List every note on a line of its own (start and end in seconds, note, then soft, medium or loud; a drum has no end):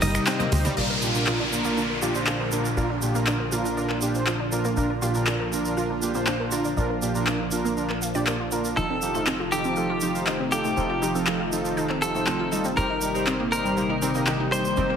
0.00 0.19 G1 loud
0.00 0.73 C3 medium
0.00 0.73 D#3 medium
0.00 0.73 G3 medium
0.00 0.12 G3 medium
0.00 0.73 A#3 medium
0.00 0.73 D#4 medium
0.00 0.12 D#4 medium
0.00 0.12 G4 medium
0.00 0.12 A#4 loud
0.00 0.67 D#5 loud
0.00 open hi-hat loud
0.00 ride medium
0.00 high conga medium
0.00 shaker loud
0.15 0.24 G3 medium
0.15 0.24 D#4 medium
0.15 0.24 G4 medium
0.15 0.24 D#5 medium
0.15 finger snap medium
0.15 closed hi-hat medium
0.15 shaker soft
0.27 0.37 G3 medium
0.27 0.35 C4 loud
0.27 0.36 D#4 medium
0.27 0.37 G4 medium
0.27 0.37 D#5 medium
0.27 clap loud
0.27 closed hi-hat medium
0.27 ride medium
0.27 shaker soft
0.40 0.48 A#3 medium
0.40 closed hi-hat soft
0.40 high conga medium
0.52 0.69 D2 loud
0.52 0.67 D#4 medium
0.52 0.67 G4 medium
0.52 0.67 C5 loud
0.52 open hi-hat loud
0.52 ride medium
0.52 shaker medium
0.65 0.76 G3 loud
0.65 closed hi-hat medium
0.65 low conga medium
0.65 shaker medium
0.77 2.75 A#1 medium
0.77 0.86 A#2 medium
0.77 8.73 A#2 medium
0.77 8.73 D3 medium
0.77 12.73 F3 medium
0.77 0.86 D4 medium
0.77 8.73 D4 medium
0.77 0.86 F4 medium
0.77 8.73 F4 medium
0.77 0.86 A#4 medium
0.77 0.89 D5 medium
0.77 crash medium
0.77 downlifter medium
0.77 shaker soft
0.90 1.01 A#4 medium
1.02 1.12 A#2 medium
1.02 1.12 D4 medium
1.02 1.12 F4 medium
1.02 1.12 G4 medium
1.02 shaker medium
1.15 1.25 A#2 medium
1.15 1.25 D4 medium
1.15 1.25 F4 medium
1.15 1.25 A#4 loud
1.15 shaker soft
1.27 1.36 A#2 medium
1.27 1.36 D4 medium
1.27 1.36 F4 medium
1.27 1.35 F4 loud
1.27 1.36 A#4 loud
1.27 clap loud
1.27 shaker soft
1.40 1.48 D4 medium
1.52 1.74 A#2 medium
1.52 1.74 D4 medium
1.52 1.74 F4 medium
1.52 1.74 A#4 loud
1.52 shaker medium
1.64 1.76 A#3 loud
1.64 shaker soft
1.77 1.87 A#2 medium
1.77 1.87 D4 medium
1.77 1.89 D4 medium
1.77 1.87 F4 medium
1.77 1.87 A#4 medium
1.77 shaker soft
1.90 1.95 A#4 medium
2.02 2.12 A#2 medium
2.02 2.12 D4 medium
2.02 2.12 F4 medium
2.02 2.10 F4 loud
2.02 2.12 G4 medium
2.02 shaker medium
2.15 2.24 A#2 medium
2.15 2.24 D4 medium
2.15 2.20 D4 medium
2.15 2.24 F4 medium
2.15 2.24 C5 medium
2.15 shaker soft
2.27 2.37 A#2 medium
2.27 2.37 D4 medium
2.27 2.37 F4 medium
2.27 2.37 C5 medium
2.27 2.39 D5 medium
2.27 clap loud
2.27 shaker soft
2.40 2.51 A#4 medium
2.52 2.67 A#2 medium
2.52 2.67 D4 medium
2.52 2.67 F4 medium
2.52 2.67 A#4 loud
2.52 shaker medium
2.65 shaker soft
2.77 4.75 A#1 medium
2.77 2.87 A#2 medium
2.77 2.87 D4 medium
2.77 2.87 F4 medium
2.77 2.85 F4 medium
2.77 2.87 A#4 loud
2.77 shaker soft
2.90 2.98 D4 medium
3.02 3.12 A#2 medium
3.02 3.12 D4 medium
3.02 3.12 F4 medium
3.02 3.12 G4 medium
3.02 shaker medium
3.15 3.25 A#2 medium
3.15 3.27 A#3 medium
3.15 3.25 D4 medium
3.15 3.25 F4 medium
3.15 3.25 A#4 loud
3.15 shaker medium
3.27 3.37 A#2 medium
3.27 3.37 D4 medium
3.27 3.39 D4 medium
3.27 3.37 F4 medium
3.27 3.36 A#4 medium
3.27 clap loud
3.27 shaker soft
3.40 3.45 A#4 medium
3.52 3.74 A#2 medium
3.52 3.74 D4 medium
3.52 3.74 F4 medium
3.52 3.60 F4 loud
3.52 3.74 A#4 medium
3.52 shaker medium
3.65 3.70 D4 medium
3.65 shaker medium
3.77 3.87 A#2 medium
3.77 3.87 D4 medium
3.77 3.87 F4 medium
3.77 3.87 A#4 medium
3.77 3.89 D5 medium
3.77 shaker soft
3.90 4.01 A#4 medium
3.90 clap soft
4.01 4.11 A#2 medium
4.01 4.11 D4 medium
4.01 4.12 F4 medium
4.01 4.12 G4 medium
4.01 shaker medium
4.15 4.24 A#2 medium
4.15 4.24 D4 medium
4.15 4.24 F4 medium
4.15 4.24 C5 medium
4.15 shaker soft
4.27 4.37 A#2 medium
4.27 4.36 D4 medium
4.27 4.35 F4 medium
4.27 4.37 F4 medium
4.27 4.37 C5 medium
4.27 clap loud
4.27 shaker soft
4.40 4.48 D4 medium
4.52 4.67 A#2 medium
4.52 4.67 D4 medium
4.52 4.67 F4 medium
4.52 4.67 A#4 loud
4.52 shaker medium
4.65 4.76 A#3 medium
4.65 shaker soft
4.77 6.75 A#1 medium
4.77 4.87 A#2 medium
4.77 4.89 D4 medium
4.77 4.87 D4 medium
4.77 4.87 F4 medium
4.77 4.87 A#4 loud
4.77 shaker soft
4.90 4.95 A#4 medium
5.02 5.12 A#2 medium
5.02 5.12 D4 medium
5.02 5.10 F4 loud
5.02 5.12 F4 medium
5.02 5.12 G4 medium
5.02 shaker medium
5.15 5.25 A#2 medium
5.15 5.25 D4 medium
5.15 5.20 D4 medium
5.15 5.25 F4 medium
5.15 5.25 A#4 loud
5.15 shaker soft
5.27 5.37 A#2 medium
5.27 5.37 D4 medium
5.27 5.37 F4 medium
5.27 5.37 A#4 loud
5.27 5.39 D5 medium
5.27 clap loud
5.27 shaker soft
5.40 5.52 A#4 medium
5.52 5.74 A#2 medium
5.52 5.74 D4 medium
5.52 5.74 F4 medium
5.52 5.74 A#4 medium
5.52 shaker medium
5.65 shaker medium
5.77 5.87 A#2 medium
5.77 5.87 D4 medium
5.77 5.87 F4 medium
5.77 5.85 F4 medium
5.77 5.87 A#4 medium
5.77 shaker soft
5.90 5.98 D4 medium
6.02 6.12 A#2 medium
6.02 6.12 D4 medium
6.02 6.12 F4 medium
6.02 6.12 G4 medium
6.02 shaker medium
6.14 6.24 A#2 medium
6.14 6.27 A#3 medium
6.14 6.24 D4 medium
6.14 6.24 F4 medium
6.14 6.24 C5 medium
6.14 shaker soft
6.27 6.37 A#2 medium
6.27 6.37 D4 medium
6.27 6.39 D4 medium
6.27 6.37 F4 medium
6.27 6.37 C5 medium
6.27 clap loud
6.27 shaker soft
6.40 6.45 A#4 medium
6.52 6.67 A#2 medium
6.52 6.67 D4 medium
6.52 6.60 F4 loud
6.52 6.67 F4 medium
6.52 6.67 A#4 medium
6.52 shaker medium
6.64 6.70 D4 medium
6.64 shaker soft
6.77 8.75 A#1 medium
6.77 6.86 A#2 medium
6.77 6.86 D4 medium
6.77 6.86 F4 medium
6.77 6.86 A#4 loud
6.77 6.89 D5 medium
6.77 shaker soft
6.90 7.02 A#4 medium
7.02 7.12 A#2 medium
7.02 7.12 D4 medium
7.02 7.12 F4 medium
7.02 7.12 G4 medium
7.02 shaker medium
7.15 7.25 A#2 medium
7.15 7.25 D4 medium
7.15 7.25 F4 medium
7.15 7.25 A#4 loud
7.15 shaker medium
7.27 7.37 A#2 medium
7.27 7.36 D4 medium
7.27 7.36 F4 medium
7.27 7.35 F4 medium
7.27 7.36 A#4 loud
7.27 clap loud
7.27 shaker soft
7.40 7.48 D4 medium
7.51 7.74 A#2 medium
7.51 7.74 D4 medium
7.51 7.74 F4 medium
7.51 7.74 A#4 loud
7.51 shaker medium
7.65 7.76 A#3 loud
7.65 shaker soft
7.77 7.87 A#2 medium
7.77 7.89 D4 medium
7.77 7.87 D4 medium
7.77 7.87 F4 medium
7.77 7.87 A#4 medium
7.77 shaker soft
7.90 7.95 A#4 medium
7.90 clap soft
8.02 8.10 F5 medium
8.02 shaker medium
8.15 8.25 A#2 medium
8.15 8.25 D4 medium
8.15 8.25 F4 medium
8.15 8.25 G4 loud
8.15 8.23 D5 medium
8.15 shaker medium
8.27 8.37 A#2 medium
8.27 8.37 D4 medium
8.27 8.37 F4 medium
8.27 8.35 A#4 medium
8.27 8.37 D5 medium
8.27 clap loud
8.27 shaker soft
8.40 8.48 F4 medium
8.52 8.57 A#3 medium
8.52 8.74 D4 medium
8.52 8.74 F4 medium
8.52 8.74 A#4 medium
8.52 shaker medium
8.65 shaker medium
8.77 10.75 F1 medium
8.77 14.96 C3 medium
8.77 14.96 D#3 medium
8.77 8.87 F3 medium
8.77 12.73 A3 medium
8.77 12.73 D#4 medium
8.77 8.85 D#4 loud
8.77 8.87 D#4 medium
8.77 8.87 F4 medium
8.77 9.42 A4 medium
8.77 8.87 A4 loud
8.77 shaker soft
8.90 8.98 C4 medium
9.02 9.12 F3 medium
9.02 9.12 D#4 medium
9.02 9.12 F4 medium
9.02 9.12 G4 medium
9.02 shaker medium
9.15 9.25 F3 medium
9.15 9.20 A3 medium
9.15 9.25 D#4 medium
9.15 9.25 F4 medium
9.15 9.25 A4 loud
9.15 shaker soft
9.27 9.37 F3 medium
9.27 9.39 C4 medium
9.27 9.37 D#4 medium
9.27 9.37 F4 medium
9.27 9.37 A4 loud
9.27 clap loud
9.27 shaker soft
9.40 9.45 F4 medium
9.52 9.74 F3 medium
9.52 9.60 D#4 loud
9.52 9.74 D#4 medium
9.52 9.74 F4 medium
9.52 10.42 G4 medium
9.52 9.74 A4 loud
9.52 shaker medium
9.64 9.70 C4 medium
9.64 shaker soft
9.76 9.87 F3 medium
9.76 9.87 D#4 medium
9.76 9.87 F4 medium
9.76 9.89 A4 medium
9.76 9.87 A4 medium
9.76 shaker soft
9.90 10.01 F4 medium
10.01 10.11 F3 medium
10.01 10.12 D#4 medium
10.01 10.12 F4 medium
10.01 10.12 G4 medium
10.01 shaker medium
10.15 10.24 F3 medium
10.15 10.24 D#4 medium
10.15 10.24 F4 medium
10.15 10.24 C5 medium
10.15 shaker soft
10.27 10.37 F3 medium
10.27 10.35 D#4 medium
10.27 10.37 D#4 medium
10.27 10.37 F4 medium
10.27 10.37 C5 medium
10.27 clap loud
10.27 shaker soft
10.40 10.48 C4 medium
10.52 10.67 F3 medium
10.52 10.67 D#4 medium
10.52 10.67 F4 medium
10.52 11.42 G4 medium
10.52 10.67 A4 loud
10.52 shaker medium
10.64 10.70 A3 medium
10.64 shaker soft
10.77 12.75 F1 medium
10.77 10.87 F3 medium
10.77 10.89 C4 medium
10.77 10.87 D#4 medium
10.77 10.87 F4 medium
10.77 10.87 A4 loud
10.77 shaker soft
10.90 10.95 F4 medium
11.02 11.12 F3 medium
11.02 11.10 D#4 loud
11.02 11.12 D#4 medium
11.02 11.12 F4 medium
11.02 11.12 G4 medium
11.02 shaker medium
11.15 11.25 F3 medium
11.15 11.20 C4 medium
11.15 11.25 D#4 medium
11.15 11.25 F4 medium
11.15 11.25 A4 loud
11.15 shaker medium
11.26 11.37 F3 medium
11.26 11.36 D#4 medium
11.26 11.37 F4 medium
11.26 11.39 A4 medium
11.26 11.37 A4 loud
11.26 clap loud
11.26 shaker soft
11.40 11.51 F4 medium
11.52 11.74 F3 medium
11.52 11.74 D#4 medium
11.52 11.74 F4 medium
11.52 11.74 A4 loud
11.52 shaker medium
11.65 shaker soft
11.77 11.87 F3 medium
11.77 11.85 D#4 medium
11.77 11.87 D#4 medium
11.77 11.87 F4 medium
11.77 11.87 A4 medium
11.77 shaker soft
11.89 11.98 C4 medium
11.89 clap soft
12.02 12.12 F3 medium
12.02 12.12 D#4 medium
12.02 12.12 F4 medium
12.02 12.12 G4 loud
12.02 12.67 A4 medium
12.02 shaker medium
12.15 12.24 F3 medium
12.15 12.20 A3 medium
12.15 12.24 D#4 medium
12.15 12.24 F4 medium
12.15 12.24 C5 medium
12.15 shaker soft
12.27 12.37 F3 medium
12.27 12.39 C4 medium
12.27 12.37 D#4 medium
12.27 12.37 F4 medium
12.27 12.37 C5 medium
12.27 clap loud
12.27 shaker soft
12.40 12.45 F4 medium
12.52 12.67 G3 medium
12.52 12.60 D#4 medium
12.52 12.67 D#4 medium
12.52 12.67 F4 medium
12.52 12.67 A4 loud
12.52 shaker medium
12.64 12.70 C4 medium
12.64 shaker soft
12.77 14.75 G1 medium
12.77 12.87 G3 medium
12.77 14.96 G3 medium
12.77 14.75 A#3 medium
12.77 12.87 D#4 medium
12.77 14.96 D#4 medium
12.77 12.89 G4 medium
12.77 12.87 G4 medium
12.77 13.42 A#4 medium
12.77 12.87 C5 loud
12.77 riser medium
12.77 shaker soft
12.90 13.01 D#4 medium
13.01 13.12 G3 medium
13.01 13.12 D#4 medium
13.01 13.12 G4 medium
13.01 13.12 A#4 medium
13.01 shaker medium
13.15 13.25 G3 medium
13.15 13.25 D#4 medium
13.15 13.25 G4 medium
13.15 13.25 C5 loud
13.15 shaker soft
13.27 13.37 G3 medium
13.27 13.35 C4 loud
13.27 13.37 D#4 medium
13.27 13.37 G4 medium
13.27 13.37 C5 loud
13.27 clap loud
13.27 shaker soft
13.40 13.48 A#3 medium
13.52 13.74 G3 medium
13.52 13.74 D#4 medium
13.52 13.74 G4 medium
13.52 14.42 A#4 medium
13.52 13.74 C5 loud
13.52 shaker medium
13.65 13.70 G3 medium
13.65 shaker soft
13.77 13.87 G3 medium
13.77 13.89 A#3 medium
13.77 13.87 D#4 medium
13.77 13.87 G4 medium
13.77 13.87 C5 medium
13.77 shaker soft
13.90 13.95 D#4 medium
14.02 14.12 G3 medium
14.02 14.10 C4 loud
14.02 14.12 D#4 medium
14.02 14.12 G4 medium
14.02 14.12 A#4 loud
14.02 shaker medium
14.15 14.24 G3 medium
14.15 14.20 A#3 medium
14.15 14.24 D#4 medium
14.15 14.24 G4 medium
14.15 14.24 D#5 medium
14.15 shaker soft
14.27 14.37 G3 medium
14.27 14.37 D#4 medium
14.27 14.37 G4 medium
14.27 14.39 G4 medium
14.27 14.37 D#5 medium
14.27 clap loud
14.27 shaker soft
14.40 14.52 D#4 medium
14.52 14.67 G3 medium
14.52 14.67 D#4 medium
14.52 14.67 G4 medium
14.52 14.67 C5 loud
14.52 14.96 C5 medium
14.52 shaker medium
14.65 shaker soft
14.77 14.96 G1 medium
14.77 14.87 G3 medium
14.77 14.85 C4 medium
14.77 14.87 D#4 medium
14.77 14.87 G4 medium
14.77 14.87 C5 loud
14.77 shaker soft
14.90 14.96 A#3 medium